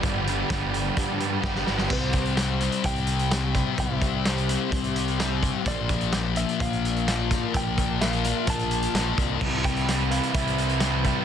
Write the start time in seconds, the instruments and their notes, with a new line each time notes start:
Already playing: ambient pad G4 D5 G5 B5, clean electric guitar D5
0.01 fingered electric bass G1, distorted electric guitar G2 D3 G3, overdriven electric guitar G2 D3 F3 G3, kick, closed hi-hat
0.05 overdriven electric guitar B3 G4
0.26 distorted electric guitar D3 G3, overdriven electric guitar F3 G3 B3 G4, closed hi-hat
0.50 fingered electric bass G1, overdriven electric guitar G2 D3 F3 G3 B3 G4, distorted electric guitar G2 D3 G3, kick, snare, closed hi-hat
0.72 overdriven electric guitar F3 G3 B3 G4, closed hi-hat
0.96 distorted electric guitar G2 D3 G3, fingered electric bass G2, kick, closed hi-hat
1.19 distorted electric guitar D3 G3, overdriven electric guitar F3 G3 B3 G4, closed hi-hat
1.43 fingered electric bass G1, distorted electric guitar G2 D3 G3, overdriven electric guitar F3 G3 B3 G4, kick, snare
1.55 snare
1.66 fingered electric bass G1, distorted electric guitar D3 G3, snare
1.78 snare
1.90 fingered electric bass C2, distorted electric guitar C3 G3 C4, ambient pad G4 C5 E5 B5, clean electric guitar C5, kick, crash
2.13 kick, closed hi-hat
2.25 closed hi-hat
2.37 distorted electric guitar C3 G3 C4, snare, closed hi-hat
2.60 distorted electric guitar G3 C4, closed hi-hat
2.72 closed hi-hat
2.84 fingered electric bass C2, distorted electric guitar C3 G3 C4, clean electric guitar G5, kick, closed hi-hat
2.96 closed hi-hat
3.07 closed hi-hat
3.19 closed hi-hat
3.31 distorted electric guitar C3 G3 C4, snare, closed hi-hat
3.55 kick, snare, closed hi-hat
3.78 fingered electric bass C2, distorted electric guitar C3 G3 C4, clean electric guitar E5, ambient pad C6, kick, closed hi-hat
4.02 kick, closed hi-hat
4.25 distorted electric guitar C3 G3 C4, clean electric guitar C5, snare, closed hi-hat
4.38 closed hi-hat
4.49 distorted electric guitar G3 C4, closed hi-hat
4.72 fingered electric bass C2, distorted electric guitar C3 G3 C4, kick, closed hi-hat
4.84 closed hi-hat
4.96 closed hi-hat
5.08 closed hi-hat
5.18 distorted electric guitar C3 G3 C4, snare, closed hi-hat
5.43 kick, closed hi-hat
5.65 fingered electric bass A#1, distorted electric guitar A#2 F3 A#3, ambient pad F4 A#4 D5 A5, clean electric guitar D5, kick, closed hi-hat
5.89 kick, closed hi-hat
6.01 closed hi-hat
6.12 distorted electric guitar A#2 F3 A#3, snare, closed hi-hat
6.36 distorted electric guitar A#3, clean electric guitar E5, closed hi-hat
6.40 distorted electric guitar F3
6.49 closed hi-hat
6.60 fingered electric bass A#1, distorted electric guitar A#2 F3 A#3, clean electric guitar F5, kick, closed hi-hat
6.73 closed hi-hat
6.85 closed hi-hat
6.96 closed hi-hat
7.07 distorted electric guitar A#2 F3 A#3, snare, closed hi-hat
7.31 kick, snare, closed hi-hat
7.53 fingered electric bass A#1, distorted electric guitar A#2 F3 A#3, clean electric guitar G5, kick, closed hi-hat
7.78 kick, closed hi-hat
8.00 distorted electric guitar A#2 F3 A#3, clean electric guitar F5, snare, closed hi-hat
8.13 closed hi-hat
8.24 distorted electric guitar A#3, closed hi-hat
8.28 distorted electric guitar F3
8.37 clean electric guitar E5
8.47 fingered electric bass A#1, distorted electric guitar A#2 F3 A#3, clean electric guitar A5, kick, closed hi-hat
8.59 closed hi-hat
8.71 closed hi-hat
8.82 closed hi-hat
8.94 fingered electric bass A#1, distorted electric guitar A#2 F3, snare, closed hi-hat
8.99 distorted electric guitar A#3
9.18 fingered electric bass C2, kick, closed hi-hat
9.41 fingered electric bass C2, distorted electric guitar C3 G3 C4, overdriven electric guitar C3 E3 G3 C4 E4, ambient pad E4 B4 C5 G5, kick, crash
9.64 overdriven electric guitar G3 C4 E4, clean electric guitar G5, kick, closed hi-hat
9.76 closed hi-hat
9.88 distorted electric guitar C3 G3 C4, overdriven electric guitar E3 G3 C4 E4, snare, closed hi-hat
10.11 distorted electric guitar G3 C4, overdriven electric guitar G3 C4 E4, clean electric guitar F5, closed hi-hat
10.23 closed hi-hat
10.34 fingered electric bass C2, distorted electric guitar C3 G3 C4, overdriven electric guitar C3 E3 G3 C4 E4, clean electric guitar E5, kick, closed hi-hat
10.47 closed hi-hat
10.58 overdriven electric guitar G3 C4 E4, closed hi-hat
10.69 closed hi-hat
10.80 distorted electric guitar C3 G3 C4, overdriven electric guitar E3 G3 C4, snare, closed hi-hat
10.85 overdriven electric guitar E4
11.04 overdriven electric guitar G3 C4 E4, kick, snare, closed hi-hat